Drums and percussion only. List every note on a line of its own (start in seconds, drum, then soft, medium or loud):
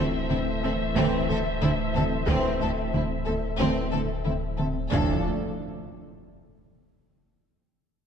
0.31 taiko mid medium
0.96 taiko medium
1.30 taiko mid medium
1.62 taiko mid medium
1.95 taiko mid medium
2.28 taiko loud
2.94 taiko mid medium
3.60 taiko medium
3.93 taiko mid medium
4.26 taiko mid medium
4.59 taiko mid medium
4.92 taiko low loud